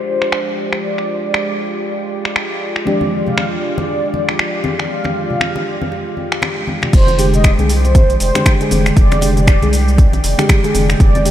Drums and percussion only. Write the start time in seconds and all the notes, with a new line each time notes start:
0.22 finger snap
0.32 finger snap
0.73 finger snap
0.98 finger snap
1.34 finger snap
2.25 finger snap
2.36 finger snap
2.76 finger snap
2.87 muted conga
3.01 high conga
3.27 muted conga, low conga
3.37 finger snap, high conga
3.78 muted conga, high conga
4.14 muted conga, high conga
4.29 finger snap
4.39 finger snap
4.64 muted conga, high conga
4.79 finger snap
5.04 finger snap, muted conga, high conga
5.30 low conga
5.40 finger snap, high conga
5.56 muted conga
5.82 high conga
5.92 muted conga
6.17 high conga
6.32 finger snap
6.42 finger snap, muted conga
6.67 high conga
6.82 finger snap, muted conga, low conga
6.93 kick, closed hi-hat, crash, muted conga, shaker
7.07 closed hi-hat, high conga, shaker
7.19 open hi-hat, shaker
7.34 closed hi-hat, low conga, shaker
7.44 finger snap, kick, closed hi-hat, muted conga, shaker
7.59 closed hi-hat, high conga, shaker
7.69 open hi-hat, shaker
7.85 muted conga, shaker
7.95 kick, closed hi-hat, high conga, shaker
8.10 closed hi-hat, shaker
8.20 open hi-hat, shaker
8.35 finger snap, closed hi-hat, muted conga, high conga, shaker
8.46 finger snap, kick, closed hi-hat, shaker
8.61 closed hi-hat, shaker
8.71 open hi-hat, muted conga, high conga, shaker
8.86 finger snap, closed hi-hat, shaker
8.97 kick, closed hi-hat, shaker
9.12 finger snap, closed hi-hat, high conga, shaker
9.21 open hi-hat, muted conga, shaker
9.36 closed hi-hat, low conga, shaker
9.47 finger snap, kick, closed hi-hat, shaker
9.63 closed hi-hat, muted conga, high conga, shaker
9.73 open hi-hat, shaker
9.88 shaker
9.98 kick, closed hi-hat, high conga, shaker
10.13 closed hi-hat, muted conga, shaker
10.24 open hi-hat, shaker
10.39 finger snap, closed hi-hat, high conga, shaker
10.49 finger snap, kick, closed hi-hat, muted conga, shaker
10.64 closed hi-hat, shaker
10.74 open hi-hat, high conga, shaker
10.90 finger snap, closed hi-hat, low conga, shaker
11.00 kick, closed hi-hat, muted conga, shaker
11.15 closed hi-hat, high conga, shaker
11.26 open hi-hat, shaker